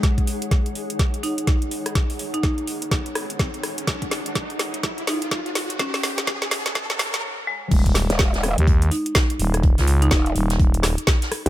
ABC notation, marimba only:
X:1
M:4/4
L:1/16
Q:"Swing 16ths" 1/4=125
K:Ebm
V:1 name="Marimba"
z8 z2 E2 z4 | z3 E E z8 z3 | z8 z2 E2 z4 | D D z12 A,2 |
z8 z2 E2 z4 | z3 E E z8 z3 |]